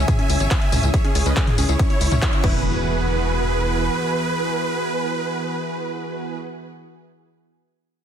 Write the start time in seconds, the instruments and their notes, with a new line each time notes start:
Already playing: analog synth pad C#3 C#4 E4 G#4, supersaw synth E5 G#5
0.08 synth pluck G#4, kick, closed hi-hat, mid tom, tambourine
0.19 synth pluck C#4, closed hi-hat
0.30 analog synth bass C#2, open hi-hat, tambourine
0.40 analog synth bass G#1, synth pluck C#5, closed hi-hat, tambourine
0.51 synth pluck C#4, kick, clap, closed hi-hat, tambourine
0.62 synth pluck E5, closed hi-hat
0.72 analog synth bass C#2, synth pluck C#4, open hi-hat, mid tom, tambourine
0.83 analog synth bass C#2, closed hi-hat, tambourine
0.94 synth pluck G#4, supersaw synth C#5 E5, kick, closed hi-hat, tambourine
1.04 synth pluck C#4, supersaw synth G#4, closed hi-hat
1.15 analog synth bass C#2, supersaw synth G#4, synth pluck C#5, open hi-hat, tambourine
1.26 analog synth bass C#2, synth pluck C#4, supersaw synth B4 D#5, closed hi-hat, tambourine
1.37 supersaw synth G#4, synth pluck E5, kick, clap, closed hi-hat, tambourine
1.47 supersaw synth G#4, closed hi-hat, mid tom
1.58 analog synth bass C#2, synth pluck C#4, supersaw synth G#4, open hi-hat, tambourine
1.69 analog synth bass C#2, supersaw synth E4 C#5, synth pluck G#4, tambourine
1.79 synth pluck C#4, kick, closed hi-hat, tambourine
1.90 synth pluck C#5, closed hi-hat
2.01 analog synth bass C#2, open hi-hat, tambourine
2.12 analog synth bass C#2, synth pluck C#4, closed hi-hat, mid tom, tambourine
2.22 synth pluck E5, kick, clap, closed hi-hat, tambourine
2.33 synth pluck C#4, closed hi-hat
2.44 analog synth bass E1, analog synth pad E3 B3 F#4 G#4, synth pluck E4, supersaw synth B4, kick, crash, impact